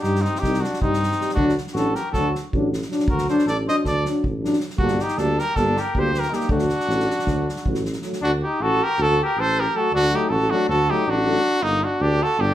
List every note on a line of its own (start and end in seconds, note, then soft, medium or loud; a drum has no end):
0.00 0.25 G2 medium
0.00 0.19 G3 medium
0.00 0.24 D#4 medium
0.00 0.23 G4 medium
0.00 snare soft
0.04 0.20 D#4 soft
0.15 snare soft
0.22 0.43 C4 medium
0.22 0.40 D#4 medium
0.22 snare soft
0.35 0.62 G4 medium
0.35 snare soft
0.41 0.64 C2 medium
0.41 0.57 G3 medium
0.41 0.57 D#4 medium
0.41 0.63 D#4 medium
0.41 kick medium
0.41 snare soft
0.54 snare soft
0.61 0.80 D4 medium
0.61 0.80 F#4 medium
0.61 snare soft
0.74 snare soft
0.81 1.11 G2 medium
0.81 0.97 G3 medium
0.81 1.32 C4 medium
0.81 0.97 D#4 medium
0.81 1.33 D#4 medium
0.81 kick medium
0.93 snare soft
1.03 snare soft
1.11 snare soft
1.19 1.34 G3 soft
1.19 1.34 D#4 soft
1.19 snare soft
1.29 snare soft
1.33 1.57 D2 medium
1.33 1.54 D4 medium
1.33 1.52 D4 medium
1.33 1.54 F#4 medium
1.33 kick medium
1.38 1.53 F#3 medium
1.49 snare soft
1.58 snare soft
1.67 snare soft
1.74 1.95 A1 medium
1.74 1.90 F#3 soft
1.74 1.90 D4 soft
1.74 1.96 F#4 medium
1.74 1.97 A4 medium
1.74 snare soft
1.94 2.13 G4 medium
1.94 2.12 A#4 medium
1.94 snare soft
2.12 2.35 D2 medium
2.12 2.29 F#3 medium
2.12 2.31 D4 medium
2.12 2.33 F#4 medium
2.12 2.32 A4 medium
2.12 kick medium
2.12 snare soft
2.35 snare soft
2.52 2.83 A1 medium
2.52 2.68 F#3 medium
2.52 2.69 D4 medium
2.52 kick medium
2.73 snare soft
2.82 snare soft
2.90 3.05 F#3 medium
2.90 3.07 D4 medium
2.90 snare soft
2.99 snare soft
3.07 3.28 D2 medium
3.07 3.28 F#4 medium
3.07 3.28 A#4 medium
3.07 kick medium
3.18 snare soft
3.27 3.43 F#3 medium
3.27 3.45 D4 medium
3.27 3.46 A4 medium
3.27 3.46 C5 medium
3.27 snare soft
3.39 snare soft
3.46 3.67 A1 medium
3.46 3.55 A4 medium
3.46 3.57 D5 medium
3.46 snare soft
3.66 3.82 F#3 medium
3.66 3.83 D4 medium
3.66 3.76 C5 medium
3.66 3.76 D#5 loud
3.66 snare soft
3.84 4.06 D2 medium
3.84 4.04 A4 medium
3.84 4.05 D5 medium
3.84 kick soft
3.84 snare soft
4.05 4.22 F#3 medium
4.05 4.22 D4 medium
4.05 snare soft
4.23 4.53 A1 medium
4.23 kick medium
4.43 4.57 F#3 soft
4.43 4.57 D4 medium
4.43 snare soft
4.53 snare soft
4.60 snare soft
4.70 snare soft
4.78 5.00 G1 medium
4.78 4.95 G3 medium
4.78 4.94 A#3 medium
4.78 5.04 D4 medium
4.78 5.03 F#4 medium
4.78 kick medium
4.88 snare soft
4.99 5.20 D#4 medium
4.99 5.19 G4 medium
4.99 snare soft
5.08 snare soft
5.17 5.38 D2 medium
5.17 5.33 G3 medium
5.17 5.33 A#3 medium
5.17 5.41 D4 medium
5.17 5.41 A4 medium
5.17 snare soft
5.39 5.57 G4 medium
5.39 5.58 A#4 medium
5.39 snare soft
5.56 5.77 G1 medium
5.56 5.73 G3 medium
5.56 5.72 A#3 medium
5.56 5.80 D4 medium
5.56 5.82 A4 medium
5.56 kick medium
5.56 snare soft
5.77 5.95 G4 medium
5.77 snare soft
5.81 6.01 A#4 medium
5.94 6.25 D2 medium
5.94 6.10 G3 medium
5.94 6.11 A#3 medium
5.94 6.14 G4 medium
5.94 kick medium
5.99 6.21 C5 loud
6.14 6.31 G4 medium
6.14 snare soft
6.19 6.36 A#4 medium
6.19 snare soft
6.30 6.46 G3 medium
6.30 6.46 A#3 medium
6.30 6.48 D#4 medium
6.30 snare soft
6.35 6.51 G4 medium
6.40 snare soft
6.49 6.71 D2 medium
6.49 6.65 F#3 medium
6.49 6.65 A3 medium
6.49 7.81 D4 medium
6.49 7.83 F#4 medium
6.49 kick medium
6.59 snare soft
6.69 snare soft
6.80 snare soft
6.87 7.09 A1 loud
6.87 7.03 F#3 medium
6.87 7.03 A3 medium
6.87 snare soft
7.00 snare soft
7.10 snare soft
7.19 snare soft
7.25 7.47 D2 medium
7.25 7.42 F#3 soft
7.25 7.43 A3 medium
7.25 kick medium
7.25 snare soft
7.49 snare soft
7.56 snare soft
7.65 7.96 A1 medium
7.65 7.80 F#3 medium
7.65 7.81 A3 medium
7.65 kick medium
7.74 snare soft
7.85 snare soft
7.93 snare soft
8.02 8.18 F#3 soft
8.02 8.19 A3 soft
8.02 snare soft
8.13 snare soft
8.21 8.43 D2 medium
8.21 8.31 D4 medium
8.21 8.32 F#4 medium
8.43 8.63 D#4 medium
8.43 8.64 G4 medium
8.60 8.81 A1 medium
8.60 8.85 F#4 medium
8.60 8.85 A4 medium
8.83 9.03 G4 medium
8.83 9.03 A#4 loud
8.98 9.19 D2 loud
8.98 9.20 F#4 medium
8.98 9.21 A4 loud
9.22 9.40 G4 medium
9.22 9.42 A#4 medium
9.37 9.67 A1 medium
9.37 9.62 A4 medium
9.37 9.61 C5 loud
9.60 9.79 G4 medium
9.60 9.77 A#4 medium
9.73 9.89 F#3 medium
9.73 9.90 A3 medium
9.73 9.92 A4 medium
9.78 9.92 F#4 medium
9.91 10.13 D2 medium
9.91 10.16 D4 medium
9.95 10.17 F#4 loud
10.12 10.28 F#3 medium
10.12 10.27 A3 medium
10.12 10.34 D#4 medium
10.12 10.31 G4 medium
10.29 10.51 A1 loud
10.29 10.53 F#4 medium
10.29 10.52 A4 loud
10.50 10.66 F#3 medium
10.50 10.66 A3 medium
10.50 10.69 D4 medium
10.50 10.68 F#4 medium
10.68 10.89 D2 loud
10.68 10.91 F#4 medium
10.68 10.92 A4 medium
10.89 11.05 F#3 medium
10.89 11.04 A3 medium
10.89 11.10 D#4 medium
10.89 11.12 G4 medium
11.07 11.37 A1 medium
11.07 11.62 D4 medium
11.07 11.65 F#4 loud
11.26 11.40 F#3 soft
11.26 11.40 A3 medium
11.61 11.83 G1 medium
11.61 11.82 A#3 medium
11.61 11.85 D#4 loud
11.81 11.99 D4 medium
11.81 12.03 F#4 medium
11.99 12.21 D2 loud
11.99 12.25 D4 medium
11.99 12.24 G4 loud
12.23 12.40 F#4 medium
12.23 12.42 A4 loud
12.38 12.54 G1 loud
12.38 12.54 D4 medium
12.38 12.54 G4 loud